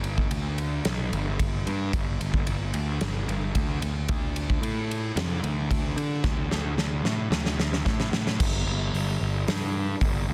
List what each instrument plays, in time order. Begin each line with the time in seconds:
Already playing: picked electric bass G1
0.04 ride
0.18 kick
0.31 picked electric bass D2, ride
0.58 ride
0.85 picked electric bass B1, snare, ride
1.12 picked electric bass G1, ride
1.39 picked electric bass G1, kick, ride
1.67 picked electric bass G2, ride
1.93 picked electric bass G1, kick, ride
2.21 picked electric bass G1, ride
2.34 kick
2.47 picked electric bass G1, ride
2.74 picked electric bass D2, ride
3.01 picked electric bass G1, snare, ride
3.27 picked electric bass G1, ride
3.55 picked electric bass D2, kick, ride
3.82 picked electric bass D2, ride
4.08 picked electric bass D2, kick, ride
4.36 ride
4.50 kick
4.61 picked electric bass A2, ride
4.91 ride
5.16 picked electric bass F2, snare, ride
5.43 picked electric bass D2, ride
5.71 picked electric bass D2, kick, ride
5.96 picked electric bass D3, ride
6.24 picked electric bass D2, kick, snare
6.50 picked electric bass D2, snare
6.76 picked electric bass D2, snare
7.03 picked electric bass A2, snare
7.30 picked electric bass D2, snare
7.45 snare
7.57 picked electric bass D2, snare
7.73 snare
7.86 picked electric bass A2, kick, snare
8.00 snare
8.11 picked electric bass A2, snare
8.27 snare
8.40 picked electric bass G1, kick, crash
8.66 picked electric bass G1
8.93 picked electric bass G1, open hi-hat
9.21 picked electric bass G1
9.48 picked electric bass G2, snare, open hi-hat
10.01 picked electric bass G1, kick, open hi-hat
10.28 picked electric bass D2